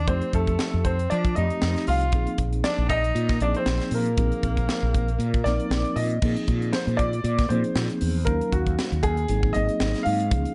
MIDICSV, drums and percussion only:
0, 0, Header, 1, 2, 480
1, 0, Start_track
1, 0, Tempo, 511945
1, 76, Time_signature, 4, 2, 24, 8
1, 9886, End_track
2, 0, Start_track
2, 0, Title_t, "Drums"
2, 70, Note_on_c, 9, 42, 68
2, 71, Note_on_c, 9, 36, 93
2, 164, Note_off_c, 9, 42, 0
2, 165, Note_off_c, 9, 36, 0
2, 202, Note_on_c, 9, 42, 33
2, 296, Note_off_c, 9, 42, 0
2, 312, Note_on_c, 9, 42, 52
2, 313, Note_on_c, 9, 36, 73
2, 406, Note_off_c, 9, 42, 0
2, 407, Note_off_c, 9, 36, 0
2, 445, Note_on_c, 9, 36, 59
2, 445, Note_on_c, 9, 42, 32
2, 538, Note_off_c, 9, 36, 0
2, 539, Note_off_c, 9, 42, 0
2, 552, Note_on_c, 9, 42, 69
2, 553, Note_on_c, 9, 38, 93
2, 646, Note_off_c, 9, 42, 0
2, 647, Note_off_c, 9, 38, 0
2, 794, Note_on_c, 9, 36, 69
2, 795, Note_on_c, 9, 42, 51
2, 888, Note_off_c, 9, 36, 0
2, 889, Note_off_c, 9, 42, 0
2, 931, Note_on_c, 9, 42, 37
2, 1025, Note_off_c, 9, 42, 0
2, 1037, Note_on_c, 9, 42, 75
2, 1131, Note_off_c, 9, 42, 0
2, 1168, Note_on_c, 9, 36, 80
2, 1172, Note_on_c, 9, 42, 36
2, 1262, Note_off_c, 9, 36, 0
2, 1266, Note_off_c, 9, 42, 0
2, 1277, Note_on_c, 9, 42, 56
2, 1370, Note_off_c, 9, 42, 0
2, 1409, Note_on_c, 9, 42, 34
2, 1503, Note_off_c, 9, 42, 0
2, 1515, Note_on_c, 9, 42, 71
2, 1516, Note_on_c, 9, 38, 105
2, 1609, Note_off_c, 9, 42, 0
2, 1610, Note_off_c, 9, 38, 0
2, 1654, Note_on_c, 9, 42, 33
2, 1655, Note_on_c, 9, 38, 30
2, 1748, Note_off_c, 9, 42, 0
2, 1749, Note_off_c, 9, 38, 0
2, 1754, Note_on_c, 9, 46, 64
2, 1847, Note_off_c, 9, 46, 0
2, 1887, Note_on_c, 9, 42, 32
2, 1981, Note_off_c, 9, 42, 0
2, 1988, Note_on_c, 9, 42, 79
2, 1994, Note_on_c, 9, 36, 98
2, 2082, Note_off_c, 9, 42, 0
2, 2088, Note_off_c, 9, 36, 0
2, 2126, Note_on_c, 9, 42, 38
2, 2220, Note_off_c, 9, 42, 0
2, 2232, Note_on_c, 9, 42, 55
2, 2235, Note_on_c, 9, 36, 76
2, 2325, Note_off_c, 9, 42, 0
2, 2329, Note_off_c, 9, 36, 0
2, 2368, Note_on_c, 9, 42, 37
2, 2462, Note_off_c, 9, 42, 0
2, 2475, Note_on_c, 9, 42, 76
2, 2476, Note_on_c, 9, 38, 100
2, 2568, Note_off_c, 9, 42, 0
2, 2569, Note_off_c, 9, 38, 0
2, 2714, Note_on_c, 9, 42, 54
2, 2715, Note_on_c, 9, 36, 71
2, 2808, Note_off_c, 9, 42, 0
2, 2809, Note_off_c, 9, 36, 0
2, 2852, Note_on_c, 9, 42, 37
2, 2946, Note_off_c, 9, 42, 0
2, 2961, Note_on_c, 9, 42, 80
2, 3055, Note_off_c, 9, 42, 0
2, 3084, Note_on_c, 9, 42, 39
2, 3085, Note_on_c, 9, 38, 30
2, 3088, Note_on_c, 9, 36, 77
2, 3178, Note_off_c, 9, 38, 0
2, 3178, Note_off_c, 9, 42, 0
2, 3182, Note_off_c, 9, 36, 0
2, 3192, Note_on_c, 9, 42, 59
2, 3286, Note_off_c, 9, 42, 0
2, 3324, Note_on_c, 9, 42, 38
2, 3418, Note_off_c, 9, 42, 0
2, 3431, Note_on_c, 9, 42, 78
2, 3432, Note_on_c, 9, 38, 105
2, 3525, Note_off_c, 9, 42, 0
2, 3526, Note_off_c, 9, 38, 0
2, 3565, Note_on_c, 9, 42, 36
2, 3566, Note_on_c, 9, 38, 31
2, 3659, Note_off_c, 9, 42, 0
2, 3660, Note_off_c, 9, 38, 0
2, 3667, Note_on_c, 9, 46, 67
2, 3761, Note_off_c, 9, 46, 0
2, 3804, Note_on_c, 9, 42, 35
2, 3898, Note_off_c, 9, 42, 0
2, 3914, Note_on_c, 9, 42, 73
2, 3916, Note_on_c, 9, 36, 99
2, 4007, Note_off_c, 9, 42, 0
2, 4010, Note_off_c, 9, 36, 0
2, 4048, Note_on_c, 9, 42, 36
2, 4142, Note_off_c, 9, 42, 0
2, 4155, Note_on_c, 9, 42, 54
2, 4156, Note_on_c, 9, 36, 75
2, 4248, Note_off_c, 9, 42, 0
2, 4250, Note_off_c, 9, 36, 0
2, 4286, Note_on_c, 9, 42, 32
2, 4287, Note_on_c, 9, 36, 64
2, 4380, Note_off_c, 9, 36, 0
2, 4380, Note_off_c, 9, 42, 0
2, 4395, Note_on_c, 9, 42, 71
2, 4396, Note_on_c, 9, 38, 96
2, 4489, Note_off_c, 9, 42, 0
2, 4490, Note_off_c, 9, 38, 0
2, 4637, Note_on_c, 9, 36, 72
2, 4637, Note_on_c, 9, 42, 50
2, 4730, Note_off_c, 9, 36, 0
2, 4731, Note_off_c, 9, 42, 0
2, 4767, Note_on_c, 9, 42, 35
2, 4861, Note_off_c, 9, 42, 0
2, 4874, Note_on_c, 9, 42, 77
2, 4968, Note_off_c, 9, 42, 0
2, 5008, Note_on_c, 9, 36, 78
2, 5010, Note_on_c, 9, 42, 33
2, 5101, Note_off_c, 9, 36, 0
2, 5103, Note_off_c, 9, 42, 0
2, 5118, Note_on_c, 9, 42, 53
2, 5119, Note_on_c, 9, 38, 30
2, 5212, Note_off_c, 9, 42, 0
2, 5213, Note_off_c, 9, 38, 0
2, 5248, Note_on_c, 9, 42, 35
2, 5342, Note_off_c, 9, 42, 0
2, 5355, Note_on_c, 9, 42, 73
2, 5356, Note_on_c, 9, 38, 105
2, 5449, Note_off_c, 9, 42, 0
2, 5450, Note_off_c, 9, 38, 0
2, 5485, Note_on_c, 9, 42, 35
2, 5579, Note_off_c, 9, 42, 0
2, 5591, Note_on_c, 9, 46, 62
2, 5684, Note_off_c, 9, 46, 0
2, 5721, Note_on_c, 9, 42, 31
2, 5814, Note_off_c, 9, 42, 0
2, 5831, Note_on_c, 9, 49, 88
2, 5835, Note_on_c, 9, 36, 103
2, 5924, Note_off_c, 9, 49, 0
2, 5928, Note_off_c, 9, 36, 0
2, 5968, Note_on_c, 9, 42, 39
2, 6062, Note_off_c, 9, 42, 0
2, 6073, Note_on_c, 9, 42, 58
2, 6076, Note_on_c, 9, 36, 79
2, 6166, Note_off_c, 9, 42, 0
2, 6170, Note_off_c, 9, 36, 0
2, 6208, Note_on_c, 9, 42, 38
2, 6301, Note_off_c, 9, 42, 0
2, 6311, Note_on_c, 9, 42, 82
2, 6312, Note_on_c, 9, 38, 98
2, 6404, Note_off_c, 9, 42, 0
2, 6405, Note_off_c, 9, 38, 0
2, 6450, Note_on_c, 9, 42, 36
2, 6544, Note_off_c, 9, 42, 0
2, 6554, Note_on_c, 9, 36, 71
2, 6554, Note_on_c, 9, 42, 59
2, 6648, Note_off_c, 9, 36, 0
2, 6648, Note_off_c, 9, 42, 0
2, 6687, Note_on_c, 9, 42, 38
2, 6781, Note_off_c, 9, 42, 0
2, 6793, Note_on_c, 9, 42, 81
2, 6887, Note_off_c, 9, 42, 0
2, 6924, Note_on_c, 9, 42, 40
2, 6925, Note_on_c, 9, 38, 33
2, 6926, Note_on_c, 9, 36, 76
2, 7017, Note_off_c, 9, 42, 0
2, 7018, Note_off_c, 9, 38, 0
2, 7020, Note_off_c, 9, 36, 0
2, 7034, Note_on_c, 9, 42, 59
2, 7128, Note_off_c, 9, 42, 0
2, 7164, Note_on_c, 9, 42, 37
2, 7257, Note_off_c, 9, 42, 0
2, 7271, Note_on_c, 9, 42, 82
2, 7272, Note_on_c, 9, 38, 102
2, 7365, Note_off_c, 9, 42, 0
2, 7366, Note_off_c, 9, 38, 0
2, 7403, Note_on_c, 9, 42, 37
2, 7496, Note_off_c, 9, 42, 0
2, 7509, Note_on_c, 9, 46, 66
2, 7603, Note_off_c, 9, 46, 0
2, 7753, Note_on_c, 9, 36, 99
2, 7753, Note_on_c, 9, 42, 81
2, 7846, Note_off_c, 9, 36, 0
2, 7846, Note_off_c, 9, 42, 0
2, 7888, Note_on_c, 9, 42, 36
2, 7982, Note_off_c, 9, 42, 0
2, 7993, Note_on_c, 9, 36, 77
2, 7993, Note_on_c, 9, 42, 55
2, 8087, Note_off_c, 9, 36, 0
2, 8087, Note_off_c, 9, 42, 0
2, 8125, Note_on_c, 9, 36, 66
2, 8128, Note_on_c, 9, 42, 35
2, 8219, Note_off_c, 9, 36, 0
2, 8222, Note_off_c, 9, 42, 0
2, 8238, Note_on_c, 9, 42, 77
2, 8239, Note_on_c, 9, 38, 100
2, 8332, Note_off_c, 9, 42, 0
2, 8333, Note_off_c, 9, 38, 0
2, 8364, Note_on_c, 9, 42, 32
2, 8458, Note_off_c, 9, 42, 0
2, 8466, Note_on_c, 9, 42, 55
2, 8470, Note_on_c, 9, 36, 72
2, 8559, Note_off_c, 9, 42, 0
2, 8564, Note_off_c, 9, 36, 0
2, 8600, Note_on_c, 9, 42, 36
2, 8694, Note_off_c, 9, 42, 0
2, 8706, Note_on_c, 9, 42, 75
2, 8799, Note_off_c, 9, 42, 0
2, 8842, Note_on_c, 9, 36, 82
2, 8936, Note_off_c, 9, 36, 0
2, 8949, Note_on_c, 9, 42, 55
2, 9043, Note_off_c, 9, 42, 0
2, 9082, Note_on_c, 9, 42, 37
2, 9176, Note_off_c, 9, 42, 0
2, 9189, Note_on_c, 9, 42, 77
2, 9190, Note_on_c, 9, 38, 104
2, 9283, Note_off_c, 9, 42, 0
2, 9284, Note_off_c, 9, 38, 0
2, 9323, Note_on_c, 9, 42, 36
2, 9324, Note_on_c, 9, 38, 32
2, 9417, Note_off_c, 9, 38, 0
2, 9417, Note_off_c, 9, 42, 0
2, 9429, Note_on_c, 9, 46, 67
2, 9523, Note_off_c, 9, 46, 0
2, 9562, Note_on_c, 9, 42, 38
2, 9656, Note_off_c, 9, 42, 0
2, 9670, Note_on_c, 9, 42, 79
2, 9671, Note_on_c, 9, 36, 106
2, 9764, Note_off_c, 9, 36, 0
2, 9764, Note_off_c, 9, 42, 0
2, 9802, Note_on_c, 9, 42, 38
2, 9886, Note_off_c, 9, 42, 0
2, 9886, End_track
0, 0, End_of_file